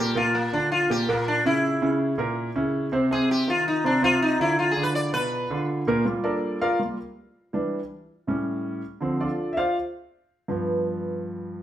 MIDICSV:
0, 0, Header, 1, 3, 480
1, 0, Start_track
1, 0, Tempo, 369458
1, 199, Time_signature, 4, 2, 24, 8
1, 15105, End_track
2, 0, Start_track
2, 0, Title_t, "Sitar"
2, 0, Program_c, 0, 104
2, 0, Note_on_c, 0, 67, 89
2, 199, Note_off_c, 0, 67, 0
2, 223, Note_on_c, 0, 65, 82
2, 444, Note_off_c, 0, 65, 0
2, 453, Note_on_c, 0, 58, 68
2, 678, Note_off_c, 0, 58, 0
2, 694, Note_on_c, 0, 62, 71
2, 918, Note_off_c, 0, 62, 0
2, 932, Note_on_c, 0, 65, 88
2, 1157, Note_off_c, 0, 65, 0
2, 1185, Note_on_c, 0, 67, 94
2, 1404, Note_off_c, 0, 67, 0
2, 1424, Note_on_c, 0, 58, 71
2, 1643, Note_off_c, 0, 58, 0
2, 1662, Note_on_c, 0, 62, 84
2, 1882, Note_off_c, 0, 62, 0
2, 1900, Note_on_c, 0, 64, 89
2, 2557, Note_off_c, 0, 64, 0
2, 4059, Note_on_c, 0, 68, 88
2, 4278, Note_off_c, 0, 68, 0
2, 4302, Note_on_c, 0, 67, 91
2, 4519, Note_off_c, 0, 67, 0
2, 4546, Note_on_c, 0, 65, 76
2, 4761, Note_off_c, 0, 65, 0
2, 4779, Note_on_c, 0, 63, 81
2, 4997, Note_off_c, 0, 63, 0
2, 5016, Note_on_c, 0, 62, 79
2, 5236, Note_off_c, 0, 62, 0
2, 5250, Note_on_c, 0, 65, 105
2, 5473, Note_off_c, 0, 65, 0
2, 5488, Note_on_c, 0, 63, 90
2, 5712, Note_off_c, 0, 63, 0
2, 5729, Note_on_c, 0, 64, 85
2, 5952, Note_off_c, 0, 64, 0
2, 5961, Note_on_c, 0, 65, 80
2, 6111, Note_off_c, 0, 65, 0
2, 6124, Note_on_c, 0, 68, 78
2, 6272, Note_off_c, 0, 68, 0
2, 6279, Note_on_c, 0, 71, 94
2, 6426, Note_off_c, 0, 71, 0
2, 6432, Note_on_c, 0, 74, 91
2, 6663, Note_off_c, 0, 74, 0
2, 6674, Note_on_c, 0, 71, 105
2, 7342, Note_off_c, 0, 71, 0
2, 15105, End_track
3, 0, Start_track
3, 0, Title_t, "Grand piano"
3, 0, Program_c, 1, 0
3, 0, Note_on_c, 1, 46, 80
3, 0, Note_on_c, 1, 58, 84
3, 0, Note_on_c, 1, 70, 78
3, 155, Note_off_c, 1, 46, 0
3, 157, Note_off_c, 1, 58, 0
3, 160, Note_off_c, 1, 70, 0
3, 200, Note_on_c, 1, 46, 79
3, 204, Note_on_c, 1, 58, 82
3, 210, Note_on_c, 1, 70, 88
3, 592, Note_off_c, 1, 46, 0
3, 595, Note_off_c, 1, 58, 0
3, 598, Note_off_c, 1, 70, 0
3, 686, Note_on_c, 1, 50, 60
3, 688, Note_on_c, 1, 62, 72
3, 690, Note_on_c, 1, 65, 67
3, 1075, Note_off_c, 1, 50, 0
3, 1076, Note_off_c, 1, 62, 0
3, 1078, Note_off_c, 1, 65, 0
3, 1169, Note_on_c, 1, 46, 76
3, 1171, Note_on_c, 1, 58, 77
3, 1177, Note_on_c, 1, 70, 74
3, 1360, Note_off_c, 1, 46, 0
3, 1362, Note_off_c, 1, 58, 0
3, 1365, Note_off_c, 1, 70, 0
3, 1412, Note_on_c, 1, 46, 87
3, 1412, Note_on_c, 1, 58, 78
3, 1420, Note_on_c, 1, 70, 88
3, 1798, Note_off_c, 1, 46, 0
3, 1798, Note_off_c, 1, 58, 0
3, 1803, Note_off_c, 1, 70, 0
3, 1882, Note_on_c, 1, 49, 68
3, 1888, Note_on_c, 1, 61, 78
3, 1893, Note_on_c, 1, 64, 71
3, 2272, Note_off_c, 1, 49, 0
3, 2275, Note_off_c, 1, 61, 0
3, 2279, Note_off_c, 1, 64, 0
3, 2362, Note_on_c, 1, 49, 78
3, 2364, Note_on_c, 1, 61, 78
3, 2371, Note_on_c, 1, 64, 79
3, 2752, Note_off_c, 1, 49, 0
3, 2753, Note_off_c, 1, 61, 0
3, 2757, Note_off_c, 1, 64, 0
3, 2832, Note_on_c, 1, 46, 82
3, 2838, Note_on_c, 1, 58, 75
3, 2843, Note_on_c, 1, 70, 86
3, 3225, Note_off_c, 1, 46, 0
3, 3229, Note_off_c, 1, 58, 0
3, 3232, Note_off_c, 1, 70, 0
3, 3321, Note_on_c, 1, 49, 73
3, 3321, Note_on_c, 1, 61, 73
3, 3324, Note_on_c, 1, 64, 82
3, 3710, Note_off_c, 1, 49, 0
3, 3711, Note_off_c, 1, 61, 0
3, 3712, Note_off_c, 1, 64, 0
3, 3793, Note_on_c, 1, 48, 85
3, 3802, Note_on_c, 1, 60, 94
3, 3806, Note_on_c, 1, 72, 85
3, 3989, Note_off_c, 1, 48, 0
3, 3994, Note_off_c, 1, 60, 0
3, 3996, Note_off_c, 1, 72, 0
3, 4041, Note_on_c, 1, 48, 82
3, 4043, Note_on_c, 1, 60, 84
3, 4046, Note_on_c, 1, 72, 81
3, 4430, Note_off_c, 1, 48, 0
3, 4431, Note_off_c, 1, 60, 0
3, 4433, Note_off_c, 1, 72, 0
3, 4515, Note_on_c, 1, 51, 62
3, 4519, Note_on_c, 1, 63, 67
3, 4522, Note_on_c, 1, 65, 67
3, 4906, Note_off_c, 1, 51, 0
3, 4909, Note_off_c, 1, 63, 0
3, 4910, Note_off_c, 1, 65, 0
3, 4990, Note_on_c, 1, 48, 79
3, 4994, Note_on_c, 1, 60, 75
3, 4998, Note_on_c, 1, 72, 73
3, 5187, Note_off_c, 1, 48, 0
3, 5189, Note_off_c, 1, 60, 0
3, 5191, Note_off_c, 1, 72, 0
3, 5226, Note_on_c, 1, 48, 93
3, 5229, Note_on_c, 1, 60, 89
3, 5232, Note_on_c, 1, 72, 91
3, 5621, Note_off_c, 1, 48, 0
3, 5623, Note_off_c, 1, 60, 0
3, 5624, Note_off_c, 1, 72, 0
3, 5706, Note_on_c, 1, 50, 77
3, 5711, Note_on_c, 1, 62, 75
3, 5712, Note_on_c, 1, 65, 79
3, 6101, Note_off_c, 1, 50, 0
3, 6104, Note_off_c, 1, 62, 0
3, 6105, Note_off_c, 1, 65, 0
3, 6184, Note_on_c, 1, 50, 77
3, 6188, Note_on_c, 1, 62, 80
3, 6190, Note_on_c, 1, 65, 79
3, 6580, Note_off_c, 1, 50, 0
3, 6582, Note_off_c, 1, 62, 0
3, 6583, Note_off_c, 1, 65, 0
3, 6662, Note_on_c, 1, 47, 85
3, 6664, Note_on_c, 1, 59, 88
3, 6672, Note_on_c, 1, 71, 83
3, 7059, Note_off_c, 1, 47, 0
3, 7060, Note_off_c, 1, 59, 0
3, 7065, Note_off_c, 1, 71, 0
3, 7151, Note_on_c, 1, 50, 81
3, 7152, Note_on_c, 1, 62, 73
3, 7159, Note_on_c, 1, 65, 80
3, 7545, Note_off_c, 1, 50, 0
3, 7545, Note_off_c, 1, 62, 0
3, 7549, Note_off_c, 1, 65, 0
3, 7632, Note_on_c, 1, 46, 92
3, 7635, Note_on_c, 1, 58, 84
3, 7639, Note_on_c, 1, 70, 93
3, 7828, Note_off_c, 1, 46, 0
3, 7830, Note_off_c, 1, 58, 0
3, 7833, Note_off_c, 1, 70, 0
3, 7862, Note_on_c, 1, 55, 59
3, 7867, Note_on_c, 1, 58, 49
3, 7873, Note_on_c, 1, 65, 61
3, 8103, Note_on_c, 1, 74, 80
3, 8110, Note_on_c, 1, 70, 65
3, 8111, Note_on_c, 1, 69, 71
3, 8112, Note_on_c, 1, 62, 67
3, 8551, Note_off_c, 1, 55, 0
3, 8554, Note_off_c, 1, 58, 0
3, 8554, Note_off_c, 1, 74, 0
3, 8557, Note_off_c, 1, 65, 0
3, 8558, Note_off_c, 1, 69, 0
3, 8558, Note_off_c, 1, 70, 0
3, 8559, Note_off_c, 1, 62, 0
3, 8594, Note_on_c, 1, 77, 101
3, 8597, Note_on_c, 1, 74, 73
3, 8598, Note_on_c, 1, 65, 81
3, 8601, Note_on_c, 1, 70, 76
3, 8818, Note_off_c, 1, 65, 0
3, 8827, Note_off_c, 1, 77, 0
3, 8828, Note_off_c, 1, 74, 0
3, 8828, Note_on_c, 1, 55, 45
3, 8830, Note_off_c, 1, 70, 0
3, 8836, Note_on_c, 1, 58, 41
3, 8837, Note_on_c, 1, 65, 53
3, 9046, Note_off_c, 1, 55, 0
3, 9051, Note_off_c, 1, 58, 0
3, 9052, Note_off_c, 1, 65, 0
3, 9785, Note_on_c, 1, 52, 58
3, 9792, Note_on_c, 1, 55, 53
3, 9798, Note_on_c, 1, 62, 66
3, 10110, Note_off_c, 1, 52, 0
3, 10114, Note_off_c, 1, 55, 0
3, 10116, Note_off_c, 1, 62, 0
3, 10748, Note_on_c, 1, 45, 52
3, 10760, Note_on_c, 1, 55, 50
3, 10762, Note_on_c, 1, 61, 58
3, 11438, Note_off_c, 1, 45, 0
3, 11444, Note_off_c, 1, 55, 0
3, 11445, Note_off_c, 1, 61, 0
3, 11701, Note_on_c, 1, 50, 60
3, 11711, Note_on_c, 1, 53, 49
3, 11718, Note_on_c, 1, 60, 68
3, 11959, Note_on_c, 1, 74, 71
3, 11960, Note_on_c, 1, 62, 58
3, 11964, Note_on_c, 1, 65, 62
3, 11965, Note_on_c, 1, 69, 58
3, 12029, Note_off_c, 1, 50, 0
3, 12035, Note_off_c, 1, 53, 0
3, 12038, Note_off_c, 1, 60, 0
3, 12378, Note_on_c, 1, 76, 65
3, 12406, Note_off_c, 1, 74, 0
3, 12407, Note_off_c, 1, 62, 0
3, 12409, Note_off_c, 1, 65, 0
3, 12409, Note_off_c, 1, 69, 0
3, 12413, Note_off_c, 1, 76, 0
3, 12436, Note_on_c, 1, 77, 89
3, 12439, Note_on_c, 1, 65, 73
3, 12440, Note_on_c, 1, 72, 64
3, 12442, Note_on_c, 1, 74, 65
3, 12671, Note_off_c, 1, 77, 0
3, 12672, Note_off_c, 1, 65, 0
3, 12673, Note_off_c, 1, 72, 0
3, 12674, Note_off_c, 1, 74, 0
3, 13620, Note_on_c, 1, 43, 56
3, 13628, Note_on_c, 1, 53, 53
3, 13636, Note_on_c, 1, 59, 65
3, 15105, Note_off_c, 1, 43, 0
3, 15105, Note_off_c, 1, 53, 0
3, 15105, Note_off_c, 1, 59, 0
3, 15105, End_track
0, 0, End_of_file